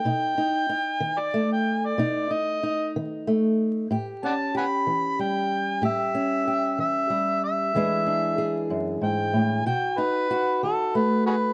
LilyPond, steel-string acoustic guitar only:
\new Staff \with { instrumentName = "Steel-string acoustic guitar" } { \time 12/8 \key b \dorian \tempo 4. = 63 << { dis'8 dis'8 dis'4 a4 dis'8 dis'8 dis'4 a4 | g'8 cis'8 g'4 g4 g'8 cis'8 g'4 g4 | <e gis d' gis'>8 d'8 gis'2 fis'8 dis'8 fis'4 a4 | } \\ { b,4 r8 dis4 r8 b,4 r8 dis4 r8 | a,4 r8 e4 r8 a,4 r8 e4 r8 | e,4 r8 fis,8 gis,8 a,8 b,4 r8 dis4 r8 | } >> }